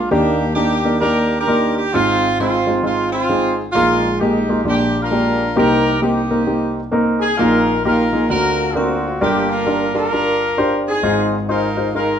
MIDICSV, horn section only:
0, 0, Header, 1, 2, 480
1, 0, Start_track
1, 0, Key_signature, -3, "major"
1, 0, Tempo, 455235
1, 109, Time_signature, 4, 2, 24, 8
1, 12857, End_track
2, 0, Start_track
2, 0, Title_t, "Horn section"
2, 0, Program_c, 0, 61
2, 113, Note_on_c, 0, 67, 94
2, 114, Note_on_c, 0, 62, 68
2, 116, Note_on_c, 0, 58, 74
2, 561, Note_off_c, 0, 67, 0
2, 562, Note_off_c, 0, 58, 0
2, 565, Note_off_c, 0, 62, 0
2, 574, Note_on_c, 0, 58, 68
2, 574, Note_on_c, 0, 67, 85
2, 577, Note_on_c, 0, 62, 63
2, 1027, Note_off_c, 0, 67, 0
2, 1049, Note_off_c, 0, 62, 0
2, 1057, Note_on_c, 0, 70, 103
2, 1061, Note_on_c, 0, 62, 73
2, 1062, Note_on_c, 0, 67, 72
2, 1425, Note_off_c, 0, 70, 0
2, 1451, Note_off_c, 0, 62, 0
2, 1453, Note_on_c, 0, 70, 98
2, 1456, Note_off_c, 0, 67, 0
2, 1464, Note_on_c, 0, 62, 69
2, 1468, Note_on_c, 0, 67, 76
2, 1500, Note_off_c, 0, 58, 0
2, 1818, Note_off_c, 0, 70, 0
2, 1850, Note_off_c, 0, 67, 0
2, 1863, Note_on_c, 0, 67, 88
2, 1992, Note_off_c, 0, 62, 0
2, 2034, Note_on_c, 0, 65, 99
2, 2036, Note_off_c, 0, 67, 0
2, 2045, Note_on_c, 0, 60, 73
2, 2505, Note_off_c, 0, 65, 0
2, 2511, Note_off_c, 0, 60, 0
2, 2518, Note_on_c, 0, 65, 80
2, 2524, Note_on_c, 0, 60, 62
2, 2961, Note_off_c, 0, 65, 0
2, 2989, Note_off_c, 0, 60, 0
2, 2999, Note_on_c, 0, 65, 87
2, 3001, Note_on_c, 0, 60, 58
2, 3265, Note_off_c, 0, 60, 0
2, 3267, Note_off_c, 0, 65, 0
2, 3277, Note_on_c, 0, 60, 67
2, 3280, Note_on_c, 0, 65, 83
2, 3747, Note_off_c, 0, 60, 0
2, 3747, Note_off_c, 0, 65, 0
2, 3927, Note_on_c, 0, 65, 91
2, 3937, Note_on_c, 0, 56, 77
2, 4384, Note_off_c, 0, 65, 0
2, 4419, Note_on_c, 0, 67, 79
2, 4424, Note_on_c, 0, 63, 63
2, 4862, Note_off_c, 0, 56, 0
2, 4871, Note_off_c, 0, 67, 0
2, 4874, Note_off_c, 0, 63, 0
2, 4917, Note_on_c, 0, 67, 82
2, 4927, Note_on_c, 0, 62, 60
2, 5277, Note_off_c, 0, 67, 0
2, 5288, Note_off_c, 0, 62, 0
2, 5294, Note_on_c, 0, 70, 89
2, 5297, Note_on_c, 0, 65, 73
2, 5301, Note_on_c, 0, 62, 66
2, 5828, Note_off_c, 0, 70, 0
2, 5830, Note_off_c, 0, 65, 0
2, 5831, Note_off_c, 0, 62, 0
2, 5874, Note_on_c, 0, 67, 74
2, 5881, Note_on_c, 0, 63, 70
2, 5881, Note_on_c, 0, 70, 102
2, 6323, Note_off_c, 0, 70, 0
2, 6329, Note_off_c, 0, 67, 0
2, 6331, Note_off_c, 0, 63, 0
2, 6342, Note_on_c, 0, 67, 72
2, 6343, Note_on_c, 0, 58, 51
2, 6343, Note_on_c, 0, 63, 55
2, 7231, Note_off_c, 0, 67, 0
2, 7265, Note_off_c, 0, 58, 0
2, 7266, Note_off_c, 0, 63, 0
2, 7592, Note_on_c, 0, 68, 95
2, 7769, Note_off_c, 0, 68, 0
2, 7777, Note_on_c, 0, 63, 76
2, 7777, Note_on_c, 0, 70, 114
2, 7779, Note_on_c, 0, 65, 71
2, 8256, Note_off_c, 0, 70, 0
2, 8261, Note_off_c, 0, 63, 0
2, 8269, Note_off_c, 0, 65, 0
2, 8269, Note_on_c, 0, 70, 91
2, 8273, Note_on_c, 0, 63, 63
2, 8281, Note_on_c, 0, 65, 72
2, 8717, Note_off_c, 0, 70, 0
2, 8719, Note_off_c, 0, 63, 0
2, 8724, Note_off_c, 0, 65, 0
2, 8740, Note_on_c, 0, 70, 98
2, 8746, Note_on_c, 0, 65, 74
2, 8750, Note_on_c, 0, 66, 73
2, 9192, Note_off_c, 0, 70, 0
2, 9208, Note_off_c, 0, 66, 0
2, 9221, Note_on_c, 0, 66, 80
2, 9226, Note_on_c, 0, 60, 61
2, 9228, Note_on_c, 0, 58, 59
2, 9667, Note_off_c, 0, 65, 0
2, 9676, Note_off_c, 0, 58, 0
2, 9676, Note_off_c, 0, 60, 0
2, 9706, Note_off_c, 0, 66, 0
2, 9713, Note_on_c, 0, 58, 71
2, 9713, Note_on_c, 0, 67, 92
2, 9717, Note_on_c, 0, 62, 65
2, 9999, Note_off_c, 0, 62, 0
2, 10011, Note_on_c, 0, 70, 88
2, 10012, Note_off_c, 0, 67, 0
2, 10012, Note_on_c, 0, 62, 73
2, 10013, Note_on_c, 0, 65, 71
2, 10473, Note_off_c, 0, 65, 0
2, 10475, Note_off_c, 0, 70, 0
2, 10482, Note_off_c, 0, 62, 0
2, 10486, Note_on_c, 0, 65, 76
2, 10487, Note_on_c, 0, 70, 108
2, 10494, Note_on_c, 0, 62, 77
2, 10630, Note_off_c, 0, 58, 0
2, 11406, Note_off_c, 0, 65, 0
2, 11407, Note_off_c, 0, 70, 0
2, 11410, Note_off_c, 0, 62, 0
2, 11462, Note_on_c, 0, 60, 54
2, 11467, Note_on_c, 0, 68, 85
2, 11470, Note_on_c, 0, 63, 52
2, 11883, Note_off_c, 0, 68, 0
2, 12096, Note_off_c, 0, 63, 0
2, 12109, Note_on_c, 0, 63, 61
2, 12113, Note_on_c, 0, 65, 61
2, 12116, Note_on_c, 0, 70, 82
2, 12374, Note_off_c, 0, 60, 0
2, 12560, Note_off_c, 0, 70, 0
2, 12586, Note_off_c, 0, 63, 0
2, 12590, Note_off_c, 0, 65, 0
2, 12599, Note_on_c, 0, 63, 67
2, 12603, Note_on_c, 0, 65, 62
2, 12605, Note_on_c, 0, 70, 91
2, 12857, Note_off_c, 0, 63, 0
2, 12857, Note_off_c, 0, 65, 0
2, 12857, Note_off_c, 0, 70, 0
2, 12857, End_track
0, 0, End_of_file